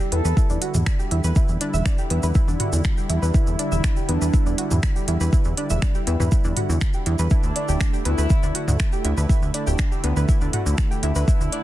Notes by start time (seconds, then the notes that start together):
Already playing: D3 G3 E4
0.12 E2 B3 A4 B4, closed hi-hat
0.25 E2 B4 B5, shaker
0.37 E4 E5, kick, shaker
0.50 E2 D4 D5, shaker
0.62 F#4 F#5, closed hi-hat
0.74 E2, mid tom, shaker
0.86 finger snap, kick, shaker
0.99 G4 G5, shaker
1.11 E2 E4 E5, closed hi-hat
1.24 E2 B4 B5, shaker
1.35 E4 E5, kick, shaker
1.48 E2, shaker
1.61 D4 D5, closed hi-hat
1.74 E1 E5 E6, shaker
1.86 D4 D5, finger snap, kick, shaker
1.98 G4 G5, shaker
2.10 E2 B3 B4, closed hi-hat
2.23 E2 B4 B5, shaker
2.34 E4 E5, kick, shaker
2.48 E2 D4 D5, shaker
2.60 F#4 F#5, closed hi-hat, mid tom
2.73 E2, shaker
2.84 finger snap, kick, shaker
2.97 G4 G5, shaker
3.09 E2 E4 E5, closed hi-hat
3.22 E2 B4 B5, shaker
3.34 E4 E5, kick, shaker
3.47 E2, shaker
3.59 D4 D5, closed hi-hat
3.72 E1 E5 E6, shaker
3.84 D4 D5, finger snap, kick, shaker
3.96 G4 G5, shaker
4.09 E2 B3 D4 B4, closed hi-hat
4.21 E2 B4 B5, shaker
4.33 E4 E5, kick, shaker
4.46 E2 D4 D5, shaker
4.58 F#4 F#5, closed hi-hat
4.71 E2, mid tom, shaker
4.83 finger snap, kick, shaker
4.96 G4 G5, shaker
5.08 E2 E4 E5, closed hi-hat
5.21 E2 B4 B5, shaker
5.33 E4 E5, kick, shaker
5.44 E2, shaker
5.57 D4 D5, closed hi-hat
5.70 E1 E5 E6, shaker
5.82 D4 D5, finger snap, kick, shaker
5.95 G4 G5, shaker
6.07 E2 B3 B4, closed hi-hat
6.20 E2 B4 B5, mid tom, shaker
6.32 E4 E5, kick, shaker
6.44 E2 D4 D5, shaker
6.57 F#4 F#5, closed hi-hat, mid tom
6.69 E2, shaker
6.81 finger snap, kick, shaker
6.93 G4 G5, shaker
7.06 E2 E4 E5, closed hi-hat
7.19 E2 B4 B5, shaker
7.30 D3 A3 D4 E4 E5, kick, shaker
7.43 D2, shaker
7.56 D4 D5, closed hi-hat
7.68 D1 G4 G5, shaker
7.80 D4 D5, finger snap, kick, shaker
7.93 G4 G5, shaker
8.05 D2 B3 E4 B4, closed hi-hat
8.18 D2 B4 B5, shaker
8.30 E4 E5, kick, shaker
8.43 D2 D4 D5, shaker
8.55 F#4 F#5, closed hi-hat
8.68 D2, mid tom, shaker
8.79 finger snap, kick, shaker
8.92 G4 G5, shaker
9.05 D2 E4 E5, closed hi-hat
9.17 D2 B4 B5, shaker
9.29 E4 E5, kick, shaker
9.42 D2, shaker
9.54 D4 D5, closed hi-hat
9.67 D1 G4 G5, shaker
9.78 D4, finger snap, kick, shaker
9.92 G4 G5, shaker
10.04 D2 B3 B4, closed hi-hat
10.16 D2 B4 B5, shaker
10.29 E4 E5, kick, shaker
10.41 D2 D4 D5, shaker
10.53 F#4 F#5, closed hi-hat, mid tom
10.66 D2, shaker
10.78 finger snap, kick, shaker
10.91 G4 G5, shaker
11.03 D2 E4 E5, closed hi-hat
11.15 D2 B4 B5, shaker
11.28 E4 E5, kick, shaker
11.40 D2, shaker
11.52 D4 D5, closed hi-hat